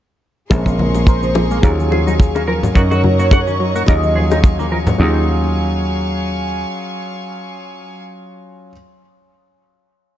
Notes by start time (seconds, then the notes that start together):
0.50 A#1 C3 G#3 A#3 C4 C#4 G#4 A#4 A#5 C6 C#6, kick, cabasa
0.66 C#3 A#3, kick, cabasa
0.79 F3, high conga
0.94 G#3 A#3, high bongo, cabasa
1.07 C3 A#4 C5, kick, cabasa
1.23 C#3 F3, cabasa
1.35 F3 G#4, high bongo
1.51 G#3 A#3, cabasa
1.62 D#2 C#3 F#3 C#4 F4 G#4 A#4 F5 G#5 C#6, kick, cabasa
1.79 D#3, cabasa
1.92 F3 G#4, high bongo
2.07 F#3 D#4, cabasa
2.20 C#3, kick, cabasa
2.35 D#3 A#3, high bongo, cabasa
2.48 F3 A#4
2.63 F#3, low conga, cabasa
2.75 F#2 C#3 F#3 C#4 D#4 F#4 A#4 C#5 D#5 A#5 C#6, kick, cabasa
2.91 D#3 F#4, high bongo, cabasa
3.04 F#3, high conga
3.19 A#3 F#4, cabasa
3.31 C#3 F#5, kick, high bongo, cabasa
3.47 D#3 C#4, cabasa
3.60 F#3
3.75 A#3 F#4, cabasa
3.86 D#2 C#3 F#3 C#4 F4 G#4 A#4 D#5 F5 G#5, kick, high bongo, cabasa
4.03 D#3, cabasa
4.16 F3 G#4
4.31 F#3 D#4, high bongo, cabasa
4.44 C#3, kick, cabasa
4.59 D#3 A#3, cabasa
4.72 F3 A#4
4.87 F#3, high bongo, low conga, cabasa
4.98 D#2 C#3 F#3 C#4 D#4 F4 G#4 F5 G#5 C#6